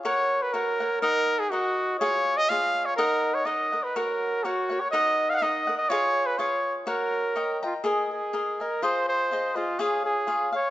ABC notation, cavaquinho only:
X:1
M:2/4
L:1/8
Q:"Swing" 1/4=123
K:F#
V:1 name="Cavaquinho"
[FAcf]2 [FAcf] [Acf] | [DAdf]2 [DAdf]2 | [EGce]2 [EGce]2 | [DAdf]2 [DAdf] [Adf] |
[FAcf]2 [FAcf] [Acf] | [DAdf]2 [DAdf] [Adf] | [EGce]2 [EGce]2 | [FAcf]2 [cd=ga] [dga] |
[K:Ab] [ABea]2 [ABea] [Bea] | [FAce]2 [FAce] [Ace] | [FAdf]2 [FAdf] [Adf] |]